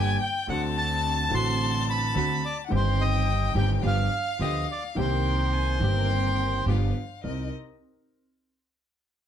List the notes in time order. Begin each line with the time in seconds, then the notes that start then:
Already playing: G1 G2 D3 G3 A#3 D4 G4 G5 G#5
0.21 G5
0.47 D2 D3 A3 C4 D4 F#4 F#5 A5
0.51 F#4
0.78 A5
1.29 A1 A2 D3 A3 C4 D4 F#4
1.33 F#4 C6
1.90 B5
2.15 D2 D3 A3 C4 D4 F#4 B5
2.45 D5
2.66 D#3 F#5
2.70 G1 G2 G3 C4 D#4 G4 G5
2.76 C5
3.01 D#5
3.55 G1 G2 D#3 G3 C4 D#4 G4 G5
3.83 G1 G2 F3 B3 D4 F4 G4 F5
3.87 F5
4.39 D2 D3 F3 B3 D4 F4 G4 D#5
4.72 D5
4.95 C2 C3 D#3 A#3 C4 D#4 A#4 G5
4.99 G4 C5
5.53 G#5
5.80 G1 G2 D#3 A#3 C4 D#4 A#4 G5
5.84 G4
6.66 G1 G2 F3 B3 D4 F4 G4 F5
7.24 C2 C4 D#4 A#4 D#5